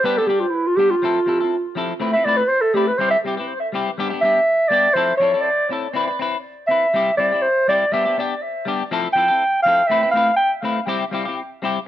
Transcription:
0.04 G3 B3 D4 G4 B4
0.18 B3 D4 G4 A4
0.27 G3 D4 G4
0.40 F4
0.50 E4
0.67 F4
0.76 G3 B3 D4 G4
0.91 F4
1.02 F3 C4 E4 A4
1.26 F3 C4 E4 A4
1.41 C4 E4 A4
1.75 F3 C4 E4 A4
2.00 A3 C4 E4 B4
2.13 C4 E4 B4 E5
2.24 A3 C4 E4 B4 D5
2.37 B4
2.48 C5
2.61 A4
2.74 A3 C4 E4 G4 B4
2.87 B4
2.98 G3 C4 E4 G4 C5
3.10 E5
3.24 G3 C4 E4 G4
3.37 C4 E4 G4
3.72 G3 C4 E4 G4
3.98 G3 B3 D4 G4
4.10 B3 D4 G4
4.21 G3 B3 D4 G4 E5
4.68 G3 B3 D4 D5
4.73 G4
4.93 F3 C4 E4 A4 C5
5.17 F3 C4 C#5
5.21 E4 A4
5.34 C4 E4 A4
5.41 D5
5.69 C4 E4 A4, muted clean electric guitar stroke
5.93 C4 E4 B4
6.08 B4, muted clean electric guitar stroke
6.19 C4 E4 B4
6.67 C4 E4 E5
6.71 B4
6.94 G3 C4 E4 G4
7.17 G3 C4 E4 D5, muted clean electric guitar stroke
7.32 C4 E4 G4
7.42 C5
7.68 G3 C4 E4 G4 D5
7.92 G3 B3 D4 G4 E5
8.05 B3 D4 G4
8.17 B3 D4 G4, muted clean electric guitar stroke
8.65 G3 B3 D4 G4
8.91 F3 C4 E4 A4
9.13 F3 C4 G5
9.17 E4 A4
9.28 C4 E4 A4
9.62 F3 C4 F5
9.67 E4 A4
9.87 A3 C4 E5
9.91 E4 B4
10.03 C4 E4 B4
10.11 A3 C4 F5
10.16 E4 B4
10.36 G5
10.62 A3 C4 E4 B4
10.87 G3 C4 E4 G4
11.11 G3 C4 E4 G4
11.25 C4 E4 G4
11.62 G3 C4 E4 G4

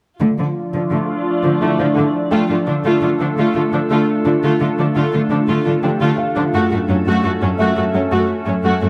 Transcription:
0.21 D3 F3 A3 D4 F4 D5
0.38 D3 F3
0.74 D3 F3
0.91 D3 A3
1.43 D3 F3
1.62 D3 A3 E4 E5
1.79 D3 F3
1.96 D3
2.31 D3 A3 D4 F4 A4 G5
2.49 D3 A3 F4
2.67 D3 F3 D4
2.84 D3 A3 F4
3.02 D3 A3 F4
3.20 D3 F3 D4
3.37 D3 A3 F4
3.55 D3 A3 F4
3.72 D3 F3 D4
3.90 D3 A3 F4
4.26 D3 F3 D4
4.43 D3 A3 F4
4.61 D3 A3 F4
4.78 D3 F3 D4
4.95 D3 A3 F4
5.13 D3 A3 F4
5.31 D3 F3 D4
5.48 D3 A3 F4
5.65 D3 A3 F4
5.83 D3 F3 D4 G4 G5
6.01 D3 A3 F4
6.18 F4 F5
6.36 D3 F3 D4
6.54 F#2 A3 C#4 F#4 A4
6.71 F#2 A3 F#4
6.89 F#2 F#3 C#4
7.06 F#2 A3 F#4
7.24 F#2 A3 F#4
7.41 F#2 F#3 C#4
7.58 F#2 A3 F#4 E5
7.76 F#2 A3 F#4
7.94 F#2 F#3 C#4
8.11 F#2 A3 F#4
8.47 F#2 F#3 C#4
8.64 F#2 A3 F#4
8.82 F#2 A3 F#4

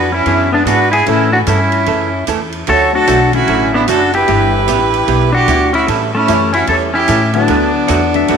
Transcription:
Already playing: F2 F#4 B4
0.12 C#4 E4
0.26 F#2 E3 B3 D4 G#4, ride
0.52 G#3 B3 D4 E4 G#4
0.65 G#2 E3 B3 D4 F#4 G#4, hi-hat pedal, ride
0.70 B4
0.92 E4 G#4, ride
1.06 A2 C#3 E3 A3 C#4 E4 A4, ride
1.10 E4
1.32 D4 F#4
1.47 G2 C#3 E3 A3 C#4 E4 A4, hi-hat pedal, ride
1.72 ride
1.86 F#2 C#3 E3 A3 C#4 A4, ride
2.27 E2 C#3 E3 A3 C#4 A4, hi-hat pedal, ride
2.52 ride
2.67 D2 D3 F#3 A3 C#4 F#4 A4 C#5, ride
2.93 F#3 A3 D4 F#4 A4 C#5
3.07 B1 D3 F#3 A3 C#4 F#4, hi-hat pedal, ride
3.31 D3 F#3 A3 C#4 E4 F#4, ride
3.36 F#4
3.48 A1 D3 F#3 A3 C#4 F#4, ride
3.74 B3 D4 E4
3.88 F#1 D3 F#3 A3 C#4 D4 F#4 A4, hi-hat pedal, ride
4.13 E4 G4 B4, ride
4.27 G1 E3 G3 B3 D4 E4 G4, ride
4.68 A1 G3 B3 E4 G4, hi-hat pedal, ride
4.94 ride
5.08 B1 G3 B3 E4 G4, ride
5.33 D4 F#4 G4
5.47 D2 G3 B3 E4 G4, hi-hat pedal, ride
5.73 C#4 E4 F#4, ride
5.87 A2 E3 G3 A3 C#4 E4 A4, ride
6.15 A3 C#4 E4
6.26 F#2 E3 G3 A3 C#4 E4 G4 A4, hi-hat pedal, ride
6.53 C#4 E4 F#4, ride
6.67 E2 E3 G3 C#4 E4 A4 C#5, ride
6.94 C#4 E4 G4
7.08 A2 E3 G3 C#4 E4 A4, hi-hat pedal, ride
7.33 D3 F#3 A3 B3 D4 E4, ride
7.48 D2 D3 F#3 A3 D4 F#4 B4, ride
7.88 E2 D3 F#3 A3 D4 F#4 B4 F#5, hi-hat pedal, ride
8.14 D3 F#3 A3 B3 D4 E5, ride
8.28 F#2 D3 F#3 A3 D4 F#4 B4 F#5, ride

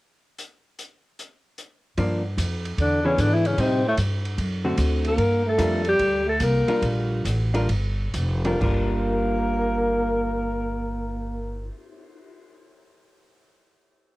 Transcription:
0.38 closed hi-hat
0.79 closed hi-hat
1.19 closed hi-hat
1.58 closed hi-hat
1.98 G2 F3 A#3 D4, kick, ride
2.38 F2, kick, hi-hat pedal, ride
2.65 ride
2.77 E2 D3 D4, kick, ride
3.03 C#3 E3 B3 C#4 D4 G#4
3.17 G#2 D3 D4, kick, hi-hat pedal, ride
3.31 E3 E4
3.45 C#3 C#4, ride
3.58 A2 C3 G3 C4 D#4, kick, ride
3.86 A2 A3
3.97 G2, kick, hi-hat pedal, ride
4.25 ride
4.38 F#2, kick, ride
4.65 D3 A3 C4 F#4
4.77 D2, kick, hi-hat pedal, ride
5.04 A#3 A#4, ride
5.18 G2, kick, ride
5.46 A3 A4
5.58 F2 G3 D4 F4 A#4, kick, hi-hat pedal, ride
5.85 G3 G4, ride
5.99 D2, kick, ride
6.26 A3 A4
6.40 C2 A#3 A#4, kick, hi-hat pedal, ride
6.68 G3 D4 F4 A#4, ride
6.82 A#1, kick, ride
7.25 A1, kick, hi-hat pedal, ride
7.54 G3 D4 F4 A#4, ride
7.69 G1, kick, ride
8.14 F1, kick, hi-hat pedal, ride
8.45 G3 D4 F4 A#4, ride
8.60 G1 G3 A#3 D4 F4 A#4, kick, crash
8.92 cymbal swell

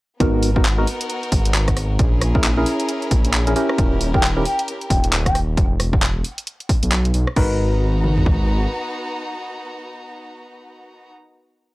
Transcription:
0.20 G#1 B3 D#4 F#4 A#4, kick, closed hi-hat
0.43 open hi-hat
0.56 B3 D#4 F#4 A#4, kick
0.65 clap
0.78 B3 D#4 F#4 A#4
0.87 open hi-hat
1.01 closed hi-hat
1.10 closed hi-hat
1.23 closed hi-hat
1.32 G#1, kick, open hi-hat
1.45 G#1, closed hi-hat
1.54 clap
1.68 kick, cross-stick, closed hi-hat
1.77 cross-stick, open hi-hat
1.99 A#1 C#4 E4 G#4 A#4, kick, closed hi-hat
2.21 cross-stick, open hi-hat
2.35 C#4 E4 G#4 A#4, kick
2.44 clap
2.57 C#4 E4 G#4 A#4
2.66 open hi-hat
2.80 closed hi-hat
2.89 closed hi-hat
3.02 closed hi-hat
3.11 A#1, kick, open hi-hat
3.25 A#1, closed hi-hat
3.33 clap
3.47 C#4 E4 G#4 A#4, closed hi-hat
3.56 C#4 E4 G4 A#4, open hi-hat
3.69 cross-stick
3.78 D#1, kick, closed hi-hat
4.01 open hi-hat
4.14 C#4 E4 G4 A#4 G5, kick
4.23 clap
4.37 C#4 E4 G4 A#4
4.45 G5, open hi-hat
4.59 closed hi-hat
4.68 closed hi-hat
4.81 closed hi-hat
4.90 D#1 G5, kick, open hi-hat
5.04 D#1, closed hi-hat
5.13 clap
5.26 G5, kick, cross-stick, closed hi-hat
5.35 cross-stick, open hi-hat
5.57 E1, kick, closed hi-hat
5.80 cross-stick, open hi-hat
5.93 kick
6.02 clap
6.25 open hi-hat
6.38 closed hi-hat
6.47 closed hi-hat
6.60 closed hi-hat
6.69 kick, open hi-hat
6.83 B1, closed hi-hat
6.92 clap
7.05 closed hi-hat
7.14 B1, open hi-hat
7.27 cross-stick
7.36 G#1 B3 D#4 F#4 A#4 B4 A#5, kick, crash
8.04 mid tom
8.17 floor tom
8.26 kick

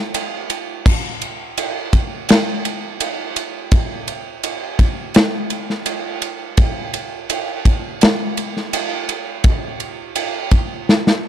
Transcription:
0.14 ride
0.50 ride
0.86 kick, crash
1.21 ride
1.57 ride
1.93 kick, ride
2.29 snare, ride
2.65 ride
3.00 ride
3.36 ride
3.72 kick, ride
4.08 ride
4.43 ride
4.79 kick, ride
5.14 snare, ride
5.50 ride
5.70 snare
5.86 ride
6.22 ride
6.57 kick, ride
6.94 ride
7.30 ride
7.65 kick, ride
8.01 snare, ride
8.37 ride
8.57 snare
8.73 ride
9.09 ride
9.44 kick, ride
9.80 ride
10.15 ride
10.51 kick, ride
10.89 snare
11.07 snare

